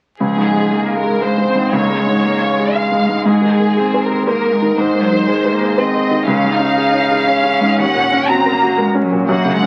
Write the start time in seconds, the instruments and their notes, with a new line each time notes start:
0.20 felt piano C#2, cello F3, violin section G#4
0.37 felt piano G#2
0.53 felt piano G#3
0.71 cello A#3, felt piano G#4
0.88 felt piano F5
0.96 cello G#3, violin section A#4
1.04 felt piano G#4
1.21 cello G#3, violin section C5, felt piano F5
1.38 felt piano G#3
1.49 cello C4
1.55 felt piano G#2
1.73 felt piano C#2, cello A#3, violin section C#5
1.90 felt piano G#3
1.99 cello G#3
2.07 felt piano G#2
2.24 cello A#3, felt piano G#4
2.42 felt piano F5
2.51 cello G#3
2.60 felt piano G#4
2.75 felt piano F5, violin section F5
2.92 felt piano G#3
3.09 felt piano G#2
3.26 felt piano G#2, violin section G#4
3.42 felt piano D#3
3.59 felt piano A#3
3.77 cello C4, felt piano G#4
3.94 felt piano C5
4.02 violin section A#4
4.11 felt piano G#4
4.27 cello A#3, violin section A#4, felt piano C5
4.46 felt piano A#3
4.52 cello G#3
4.62 felt piano D#3
4.77 felt piano G#2, cello G#3, violin section C5
4.95 felt piano A#3
5.02 cello F#3
5.12 felt piano D#3
5.27 cello G#3, felt piano G#4
5.45 felt piano C5
5.54 cello A#3
5.61 felt piano G#4
5.77 cello C4, felt piano C5, violin section D#5
5.95 felt piano A#3
6.11 felt piano D#3
6.26 felt piano C#2, cello C#4, violin section F5
6.44 felt piano G#2
6.52 cello D#4
6.59 felt piano C#4
6.77 felt piano G#4
6.94 felt piano C#5
7.11 felt piano G#4
7.27 cello C#4, felt piano C#5
7.43 felt piano C#4
7.61 felt piano G#2
7.78 felt piano D#2, violin section F#5
7.95 felt piano A#2
8.12 felt piano C#4
8.27 cello C4, felt piano F#4, violin section A#5
8.46 felt piano A#4
8.53 cello A#3
8.63 felt piano F#4
8.77 cello G#3, felt piano A#4
8.94 felt piano C#4
9.02 cello F#3
9.12 felt piano A#2
9.28 felt piano F#2, cello A#3, violin section F#5
9.45 felt piano C#3
9.54 cello G#3
9.63 felt piano C#4